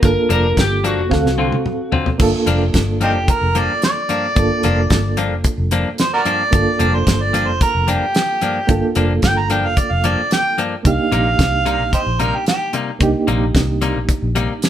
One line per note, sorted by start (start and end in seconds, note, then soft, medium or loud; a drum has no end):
0.01 0.15 G1 medium
0.01 1.08 A#3 medium
0.01 1.09 D4 medium
0.01 1.10 F4 medium
0.01 1.10 A4 medium
0.01 0.31 A#4 medium
0.01 kick loud
0.01 closed hi-hat medium
0.29 0.54 F1 medium
0.29 0.46 G2 medium
0.29 0.46 F3 medium
0.29 0.47 A#3 medium
0.29 0.47 D4 medium
0.29 0.59 A#4 medium
0.29 closed hi-hat medium
0.57 0.97 G1 medium
0.57 0.86 G4 medium
0.57 kick medium
0.57 snare loud
0.57 closed hi-hat medium
0.84 1.00 G2 medium
0.84 1.01 F3 medium
0.84 1.01 A#3 medium
0.84 1.01 D4 medium
0.84 1.90 F#4 medium
0.84 closed hi-hat medium
0.97 1.10 F1 medium
1.10 1.24 D2 medium
1.10 2.17 C4 medium
1.10 2.18 F#4 medium
1.10 2.19 A4 medium
1.10 2.18 F5 medium
1.10 kick medium
1.10 snare medium
1.25 1.50 C2 medium
1.25 snare medium
1.38 1.55 D3 medium
1.38 1.55 F#3 medium
1.38 1.55 C4 medium
1.38 1.55 F4 medium
1.52 high tom medium
1.66 mid tom medium
1.92 2.09 D3 medium
1.92 2.09 F#3 medium
1.92 2.09 C4 medium
1.92 2.09 F4 medium
1.92 floor tom medium
2.06 floor tom medium
2.18 2.32 G1 medium
2.18 4.32 A#3 medium
2.18 4.32 D4 medium
2.18 4.33 F4 medium
2.18 kick loud
2.18 crash medium
2.22 4.34 A4 medium
2.46 2.72 F1 medium
2.46 2.63 G2 medium
2.46 2.63 F3 medium
2.46 2.64 A#3 medium
2.46 2.64 D4 medium
2.46 closed hi-hat medium
2.74 3.15 G1 medium
2.74 kick medium
2.74 snare loud
2.74 closed hi-hat medium
3.01 3.17 G2 medium
3.01 3.18 F3 medium
3.01 3.18 A#3 medium
3.01 3.12 C4 medium
3.01 3.18 D4 medium
3.01 3.12 D#4 medium
3.01 3.33 G4 medium
3.01 closed hi-hat medium
3.15 3.27 F1 medium
3.28 3.59 A#4 medium
3.28 kick medium
3.28 closed hi-hat medium
3.41 3.66 F1 medium
3.55 3.72 G2 medium
3.55 3.72 F3 medium
3.55 3.72 A#3 medium
3.55 3.72 D4 medium
3.55 3.83 D5 medium
3.55 closed hi-hat medium
3.82 5.42 D5 medium
3.82 snare loud
3.82 closed hi-hat medium
4.09 4.26 G2 medium
4.09 4.26 F3 medium
4.09 4.26 A#3 medium
4.09 4.26 D4 medium
4.09 closed hi-hat medium
4.35 4.49 G1 medium
4.35 6.48 A#3 medium
4.35 6.49 D4 medium
4.35 6.50 F4 medium
4.35 6.50 A4 medium
4.35 kick medium
4.35 closed hi-hat medium
4.63 4.88 F1 medium
4.63 4.80 G2 medium
4.63 4.80 F3 medium
4.63 4.80 A#3 loud
4.63 4.81 D4 medium
4.63 closed hi-hat medium
4.90 5.31 G1 medium
4.90 kick medium
4.90 snare loud
4.90 closed hi-hat medium
5.17 5.34 G2 medium
5.17 5.34 F3 medium
5.17 5.34 A#3 medium
5.17 5.35 D4 medium
5.17 closed hi-hat medium
5.31 5.43 F1 medium
5.44 kick medium
5.44 closed hi-hat medium
5.58 5.83 F1 medium
5.71 5.88 G2 medium
5.71 5.88 F3 loud
5.71 5.88 A#3 medium
5.71 5.89 D4 medium
5.71 closed hi-hat medium
5.98 6.12 C5 medium
5.98 snare loud
5.98 closed hi-hat medium
6.14 6.23 F#4 medium
6.14 6.22 A#4 medium
6.14 6.96 D5 loud
6.25 6.42 G2 medium
6.25 6.42 F3 medium
6.25 6.42 A#3 medium
6.25 6.43 D4 medium
6.25 closed hi-hat medium
6.51 6.65 G1 medium
6.51 8.64 A#3 medium
6.51 8.65 D4 medium
6.51 8.65 F4 medium
6.51 kick loud
6.51 closed hi-hat medium
6.55 8.66 A4 medium
6.79 7.04 F1 medium
6.79 6.96 G2 medium
6.79 6.96 F3 medium
6.79 6.96 A#3 medium
6.79 6.97 D4 medium
6.79 closed hi-hat medium
6.95 7.23 C5 medium
7.07 7.47 G1 medium
7.07 kick medium
7.07 snare loud
7.07 closed hi-hat medium
7.22 7.50 D5 medium
7.33 7.50 G2 medium
7.33 7.50 F3 medium
7.33 7.50 A#3 medium
7.33 7.51 D4 medium
7.33 closed hi-hat medium
7.47 7.59 F1 medium
7.47 7.60 C5 medium
7.61 7.90 A#4 medium
7.61 kick medium
7.61 closed hi-hat medium
7.75 7.99 F1 medium
7.88 8.04 G2 medium
7.88 8.04 F3 medium
7.88 8.04 A#3 medium
7.88 8.05 D4 medium
7.88 8.93 G4 loud
7.88 closed hi-hat medium
8.15 snare loud
8.15 closed hi-hat medium
8.41 8.58 G2 medium
8.41 8.58 F3 medium
8.41 8.59 A#3 medium
8.41 8.59 D4 medium
8.41 closed hi-hat medium
8.67 8.81 G1 medium
8.67 10.80 A#3 medium
8.67 10.80 D4 medium
8.67 10.81 F4 medium
8.67 10.82 A4 medium
8.67 kick loud
8.67 closed hi-hat medium
8.95 9.21 F1 loud
8.95 9.12 G2 medium
8.95 9.12 F3 medium
8.95 9.13 A#3 medium
8.95 9.13 D4 medium
8.95 closed hi-hat medium
9.22 9.64 G1 medium
9.22 9.40 G5 loud
9.22 kick medium
9.22 snare loud
9.22 closed hi-hat medium
9.38 9.50 A#5 medium
9.50 9.66 G2 medium
9.50 9.66 F3 medium
9.50 9.66 A#3 medium
9.50 9.67 D4 medium
9.50 9.67 G5 medium
9.50 closed hi-hat medium
9.64 9.76 F1 medium
9.64 9.80 F5 medium
9.77 9.93 D5 medium
9.77 kick medium
9.77 closed hi-hat medium
9.91 10.15 F1 medium
9.91 10.07 F5 medium
10.04 10.20 G2 medium
10.04 10.20 F3 medium
10.04 10.21 A#3 medium
10.04 10.21 D4 medium
10.04 10.31 D5 medium
10.04 closed hi-hat medium
10.31 10.58 G5 medium
10.31 snare loud
10.31 closed hi-hat medium
10.58 10.74 G2 medium
10.58 10.74 F3 medium
10.58 10.74 A#3 medium
10.58 10.75 D4 medium
10.58 closed hi-hat medium
10.83 10.97 C2 medium
10.83 12.96 A#3 medium
10.83 12.96 D4 medium
10.83 12.97 D#4 medium
10.83 12.98 G4 medium
10.83 11.90 F5 medium
10.83 kick medium
10.83 closed hi-hat medium
11.12 11.36 A#1 medium
11.12 11.28 C3 medium
11.12 11.28 G3 medium
11.12 11.28 A#3 medium
11.12 11.29 D#4 medium
11.12 closed hi-hat medium
11.39 11.80 C2 medium
11.39 kick medium
11.39 snare loud
11.39 closed hi-hat medium
11.66 11.82 C3 medium
11.66 11.82 G3 medium
11.66 11.82 A#3 medium
11.66 11.82 D#4 medium
11.66 closed hi-hat medium
11.80 11.92 A#1 medium
11.93 12.01 D#4 medium
11.93 12.00 G4 medium
11.93 12.23 C5 medium
11.93 kick medium
11.93 closed hi-hat medium
12.06 12.31 A#1 medium
12.19 12.36 C3 medium
12.19 12.36 G3 medium
12.19 12.36 A#3 medium
12.19 12.36 D#4 medium
12.19 12.37 A#4 medium
12.19 closed hi-hat medium
12.35 12.47 G4 medium
12.46 12.73 G4 medium
12.46 snare loud
12.46 closed hi-hat medium
12.73 12.90 C3 medium
12.73 12.90 G3 medium
12.73 12.90 A#3 medium
12.73 12.90 D#4 medium
12.73 closed hi-hat medium
12.99 13.13 C2 medium
12.99 14.69 A#3 medium
12.99 14.69 D4 medium
12.99 14.69 D#4 medium
12.99 14.69 G4 medium
12.99 kick loud
12.99 closed hi-hat medium
13.27 13.52 A#1 medium
13.27 13.44 C3 medium
13.27 13.44 G3 medium
13.27 13.44 A#3 loud
13.27 13.44 D#4 medium
13.27 closed hi-hat medium
13.55 13.95 C2 medium
13.55 kick medium
13.55 snare loud
13.55 closed hi-hat medium
13.81 13.98 C3 medium
13.81 13.98 G3 medium
13.81 13.98 A#3 medium
13.81 13.98 D#4 medium
13.81 closed hi-hat medium
13.95 14.07 A#1 medium
14.09 kick medium
14.09 closed hi-hat medium
14.22 14.47 A#1 medium
14.35 14.52 C3 medium
14.35 14.52 G3 loud
14.35 14.52 A#3 medium
14.35 14.52 D#4 loud
14.35 closed hi-hat medium
14.62 snare loud
14.62 closed hi-hat medium